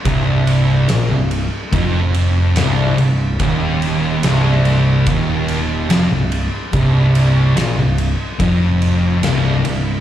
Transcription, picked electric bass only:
\new Staff \with { instrumentName = "Picked electric bass" } { \clef bass \time 4/4 \key c \minor \tempo 4 = 72 c,,4 bes,,16 c,,8 r16 f,,4 c,,8 c,,8 | ees,,4 c,,4 ees,,4 f,,16 c,,8 r16 | c,,4 bes,,16 c,,8 r16 f,,4 c,,8 c,,8 | }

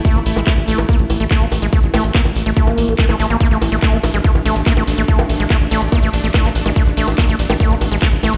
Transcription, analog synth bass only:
\new Staff \with { instrumentName = "Analog synth bass" } { \clef bass \time 4/4 \tempo 4 = 143 r16 a,,16 a,,16 a,,16 r16 a,,16 a,,16 a,,16 r16 a,,16 a,,16 a,,16 r16 a,,16 a,,16 a,,16 | r16 a,,16 a,,16 a,,16 r16 a,,16 a,,16 a,,16 r16 a,,16 a,,16 a,,16 r16 a,,16 a,,16 a,,16 | r16 a,,16 a,,16 a,,16 r16 a,,16 a,,16 a,,16 r16 a,,16 a,,16 a,,16 r16 a,,16 a,,16 a,,16 | r16 a,,16 a,,16 a,,16 r16 a,,16 a,,16 a,,16 r16 a,,16 a,,16 a,,16 r16 a,,16 a,,16 a,,16 |
r16 a,,16 a,,16 a,,16 r16 a,,16 a,,16 a,,16 r16 a,,16 a,,16 a,,16 r16 a,,16 a,,16 a,,16 | }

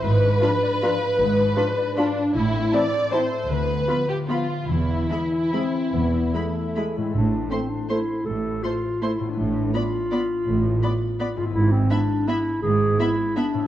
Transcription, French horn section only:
\new Staff \with { instrumentName = "French horn section" } { \time 3/4 \key a \minor \tempo 4 = 160 r4 <eis d'>4 <eis d'>4 | r4 <eis d'>4 <eis d'>4 | r4 <e c'>4 <e c'>4 | r4 <f b>4 <f b>4 |
r4 e4 c'4 | b4 a4. gis8 | r2. | r2. |
r2. | r2. | r2. | r2. | }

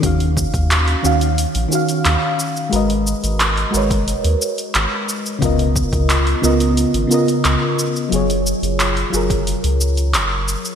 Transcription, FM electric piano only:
\new Staff \with { instrumentName = "FM electric piano" } { \time 4/4 \key ees \minor \tempo 4 = 89 <ees des' ges' f''>4. <ees des' ges' f''>4 <ees des' ges' f''>4. | <aes ges' bes' ces'' ees''>4. <aes ges' bes' ces'' des''>2~ <aes ges' bes' ces'' des''>8 | <des ces' f' bes' ees''>4. <des ces' f' bes' ees''>4 <des ces' f' bes' ees''>4. | <ges f' aes' des''>4. <ges f' aes' bes'>2~ <ges f' aes' bes'>8 | }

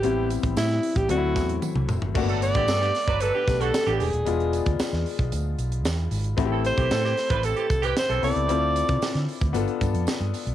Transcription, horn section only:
\new Staff \with { instrumentName = "Horn section" } { \time 4/4 \key g \major \tempo 4 = 114 r1 | r16 <fis d' a'>16 r16 <d b g'>16 <fis d' a'>16 <d b g'>16 r16 <fis d' b'>16 <fis d' a'>16 <d b g'>16 r16 <d b fis'>16 r16 <d b g'>8 r16 | r1 | r16 <e c' a'>16 r16 <e c' g'>16 <e c' a'>16 <e c' g'>16 r16 <g e' b'>16 <e c' a'>16 <e c' g'>16 r16 <e c' g'>16 r16 <e c' a'>8 r16 |
r1 | }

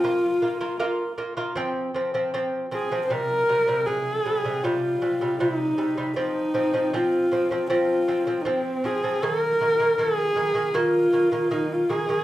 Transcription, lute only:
\new Staff \with { instrumentName = "Lute" } { \clef bass \time 4/4 \key f \minor \tempo 4 = 78 <bes f'>8 <bes f'>16 <bes f'>16 <bes f'>8 <bes f'>16 <bes f'>16 <f c'>8 <f c'>16 <f c'>16 <f c'>8 <f c'>16 <f c'>16 | <c g>8 <c g>16 <c g>16 c8 <c g>16 <c g>16 <c g>8 <c g>16 <c g>16 <c g>8 <c g>16 <c g>16 | <f c'>8 <f c'>16 <f c'>16 <f c'>8 <f c'>16 <f c'>16 <f c'>8 <f c'>16 <f c'>16 <f c'>8 <f c'>16 <f c'>16 | <ees bes>8 <ees bes>16 <ees bes>16 <ees bes>8 <ees bes>16 <ees bes>16 <ees bes>8 <ees bes>16 <ees bes>16 <ees bes>8 <ees bes>16 <ees bes>16 | }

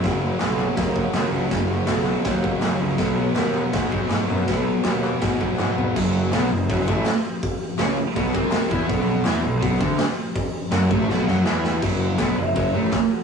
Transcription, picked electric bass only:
\new Staff \with { instrumentName = "Picked electric bass" } { \clef bass \time 4/4 \key b \lydian \tempo 4 = 163 fis,,4 b,,4 dis,4 dis,8 cis,8 | fis,,4 b,,4 dis,4 dis,8 cis,8 | b,,4 dis,4 gis,4 gis,8 fis,8 | b,,4 dis,4 gis,4 gis,8 gis,,8 |
fis,,4 b,,8 fis,,8 fis,,8 a,,8 r4 | r4 cis,8 r8 b,,8 bis,,4 e,8 | b,,4 e,8 b,,8 b,,8 d,8 r4 | r4 fis,8 a,,8 b,,8 fis,8 e,4 |
fis,,4 b,,8 fis,,8 fis,,8 a,,8 r4 | }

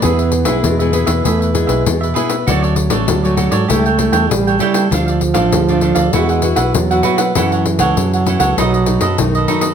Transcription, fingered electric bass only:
\new Staff \with { instrumentName = "Fingered electric bass" } { \clef bass \time 4/4 \key e \mixolydian \tempo 4 = 98 e,8. b,,16 e,8. e,16 e,8. b,,16 e,8 r8 | d,8. a,,16 d,8. gis,16 cis,8. e,16 a,,8 r8 | d,8. a,,16 d,8. d,16 e,8. b,,16 e,8 r8 | fis,8. cis,16 fis,8. cis,16 b,,8. fis,16 b,,8 r8 | }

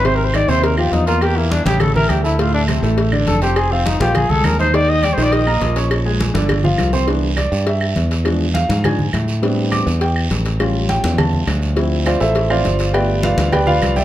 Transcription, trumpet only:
\new Staff \with { instrumentName = "Trumpet" } { \time 4/4 \key d \minor \tempo 4 = 205 \tuplet 3/2 { c''8 bes'8 c''8 } d''8 c''8 bes'8 g'8 ees'8 f'8 | g'8 bes8 d'8 g'8 a'8 bes'8 g'8 e'8 | f'8 d'8 r2 a'8 g'8 | aes'8 c'8 ees'8 g'8 aes'8 a'8 bes'8 c''8 |
d''8 ees''8 \tuplet 3/2 { d''8 c''8 d''8 } ees''2 | r1 | \key c \major r1 | r1 |
r1 | r1 | r1 | r1 | }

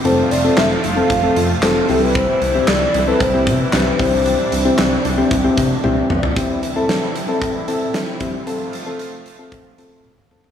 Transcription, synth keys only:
\new Staff \with { instrumentName = "Synth keys" } { \time 4/4 \key c \major \tempo 4 = 114 <c' f' a'>8 r16 <c' f' a'>8 r8 <c' f' a'>16 r16 <c' f' a'>8 r16 <c' f' a'>8 <c' e' g'>8~ | <c' e' g'>8 r16 <c' e' g'>8 r8 <c' e' a'>16 r16 <c' e' g'>8 r16 <c' e' g'>8 <c' e' g'>8~ | <c' e' g'>8 r16 <c' e' g'>8 r8 <c' e' g'>16 r16 <c' e' g'>8 r16 <c' e' g'>8 r8 | <c' e' g'>8 r16 <c' e' a'>8 r8 <c' e' a'>8 r16 <c' e' a'>8 r8 <c' e' g'>16 r16 |
<c' f' a'>8 r16 <c' f' a'>8 r8 <c' f' a'>8 r16 <c' f' a'>8 r8 <c' f' a'>16 r16 | }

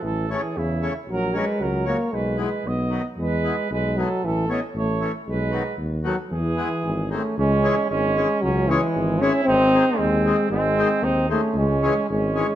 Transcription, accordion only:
\new Staff \with { instrumentName = "Accordion" } { \clef bass \time 2/4 \key e \major \tempo 4 = 115 r8 <e a cis'>8 r8 <e a cis'>8 | r8 <fis ais cis'>8 r8 <fis ais cis'>8 | r8 <e gis b>8 r8 <dis fis b>8 | r8 <e gis b>8 r8 <e gis b>8 |
r8 <e a cis'>8 r8 <e a cis'>8 | r8 <dis fis b>8 r8 <dis fis b>8 | r8 <e gis b>8 r8 <dis gis bis>8 | \key cis \minor r8 <e gis cis'>8 r8 <e gis cis'>8 |
r8 <e gis cis'>8 r8 <e gis cis'>8 | r8 <dis gis bis>8 r8 <dis gis bis>8 | r8 <dis gis bis>8 r8 <dis gis bis>8 | r8 <e gis cis'>8 r8 <e gis cis'>8 | }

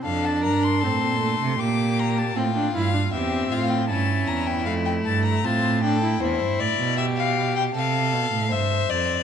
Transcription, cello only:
\new Staff \with { instrumentName = "Cello" } { \clef bass \time 4/4 \key f \major \tempo 4 = 78 f,8 g,8 a,16 bes,8 c16 bes,4 a,8 g,8 | e,8 a,8 g,8 e,8 f,8 g,8 a,4 | e,16 g,16 a,16 b,4~ b,16 c8 b,16 a,16 g,8 f,8 | }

